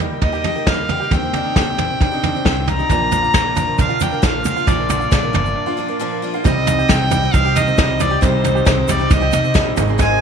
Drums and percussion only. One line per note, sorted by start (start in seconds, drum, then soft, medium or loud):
0.22 kick loud
0.22 floor tom medium
0.44 floor tom medium
0.67 kick medium
0.67 snare loud
0.67 floor tom medium
0.89 floor tom medium
1.11 kick medium
1.11 floor tom medium
1.33 floor tom medium
1.56 kick medium
1.56 snare medium
1.56 floor tom medium
1.78 floor tom medium
2.01 kick loud
2.01 floor tom medium
2.23 floor tom medium
2.45 kick loud
2.45 snare medium
2.45 floor tom medium
2.67 floor tom medium
2.89 kick loud
2.89 floor tom medium
2.89 shaker medium
3.12 floor tom medium
3.12 shaker medium
3.24 shaker soft
3.34 kick medium
3.34 snare loud
3.34 floor tom medium
3.34 shaker medium
3.56 floor tom medium
3.56 shaker medium
3.78 kick loud
3.78 floor tom medium
3.78 shaker medium
4.00 floor tom medium
4.00 shaker medium
4.23 kick medium
4.23 snare loud
4.23 floor tom medium
4.23 shaker medium
4.45 floor tom medium
4.45 shaker medium
4.57 shaker soft
4.67 kick loud
4.67 floor tom medium
4.67 shaker medium
4.90 floor tom medium
4.90 shaker medium
5.01 shaker soft
5.12 kick loud
5.12 snare loud
5.12 floor tom medium
5.12 shaker medium
5.34 floor tom medium
5.46 shaker soft
6.45 kick loud
6.45 floor tom medium
6.45 shaker medium
6.67 floor tom medium
6.67 shaker loud
6.79 shaker soft
6.89 kick loud
6.89 snare loud
6.89 floor tom medium
6.89 shaker medium
7.11 floor tom medium
7.11 shaker loud
7.34 kick loud
7.34 floor tom medium
7.34 shaker medium
7.56 floor tom medium
7.56 shaker medium
7.67 shaker soft
7.78 kick loud
7.78 snare loud
7.78 floor tom medium
7.78 shaker medium
8.00 floor tom medium
8.00 shaker medium
8.22 kick loud
8.22 floor tom medium
8.22 shaker medium
8.44 floor tom medium
8.44 shaker medium
8.56 shaker soft
8.66 kick loud
8.66 snare loud
8.66 floor tom medium
8.66 shaker medium
8.88 floor tom medium
8.88 shaker medium
9.11 kick loud
9.11 floor tom medium
9.11 shaker medium
9.33 floor tom medium
9.33 shaker medium
9.44 shaker soft
9.55 kick loud
9.55 snare loud
9.55 floor tom medium
9.55 shaker medium
9.77 floor tom medium
9.77 shaker medium
9.99 kick loud
9.99 floor tom medium
9.99 shaker medium